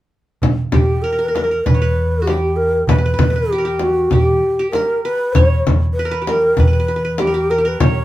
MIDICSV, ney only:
0, 0, Header, 1, 2, 480
1, 0, Start_track
1, 0, Tempo, 614125
1, 341, Time_signature, 4, 2, 24, 8
1, 6289, End_track
2, 0, Start_track
2, 0, Title_t, "Ney"
2, 0, Program_c, 0, 77
2, 570, Note_on_c, 0, 67, 65
2, 799, Note_on_c, 0, 70, 76
2, 811, Note_off_c, 0, 67, 0
2, 1282, Note_on_c, 0, 71, 83
2, 1294, Note_off_c, 0, 70, 0
2, 1768, Note_on_c, 0, 67, 71
2, 1780, Note_off_c, 0, 71, 0
2, 2005, Note_on_c, 0, 70, 83
2, 2016, Note_off_c, 0, 67, 0
2, 2250, Note_off_c, 0, 70, 0
2, 2255, Note_on_c, 0, 71, 78
2, 2739, Note_on_c, 0, 67, 73
2, 2751, Note_off_c, 0, 71, 0
2, 2983, Note_on_c, 0, 66, 76
2, 2994, Note_off_c, 0, 67, 0
2, 3216, Note_off_c, 0, 66, 0
2, 3216, Note_on_c, 0, 66, 82
2, 3302, Note_off_c, 0, 66, 0
2, 3302, Note_on_c, 0, 67, 82
2, 3678, Note_off_c, 0, 67, 0
2, 3683, Note_on_c, 0, 70, 81
2, 3913, Note_off_c, 0, 70, 0
2, 3939, Note_on_c, 0, 71, 87
2, 4167, Note_on_c, 0, 73, 90
2, 4179, Note_off_c, 0, 71, 0
2, 4441, Note_off_c, 0, 73, 0
2, 4642, Note_on_c, 0, 71, 79
2, 4873, Note_off_c, 0, 71, 0
2, 4911, Note_on_c, 0, 70, 79
2, 5153, Note_on_c, 0, 71, 86
2, 5164, Note_off_c, 0, 70, 0
2, 5626, Note_on_c, 0, 67, 82
2, 5638, Note_off_c, 0, 71, 0
2, 5866, Note_on_c, 0, 70, 78
2, 5877, Note_off_c, 0, 67, 0
2, 5999, Note_on_c, 0, 71, 77
2, 6011, Note_off_c, 0, 70, 0
2, 6109, Note_off_c, 0, 71, 0
2, 6116, Note_on_c, 0, 73, 87
2, 6289, Note_off_c, 0, 73, 0
2, 6289, End_track
0, 0, End_of_file